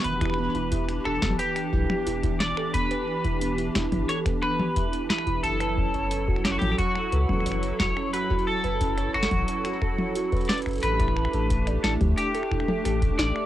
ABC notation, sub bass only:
X:1
M:4/4
L:1/16
Q:1/4=89
K:Edor
V:1 name="Sub bass" clef=bass
E,,,3 E,,,3 E,,, G,,, z2 B,,, z E,,,2 E,,, z | z3 E,,,3 E,,, G,,, z6 z E,,, | F,,,3 F,,,3 F,,, A,,, z2 C,, z F,,,2 F,,, z | z3 F,,,3 F,,, A,,, z6 z F,,, |
A,,,3 A,,,3 A,,, D,, z2 E,,, z A,,,2 A,,, z |]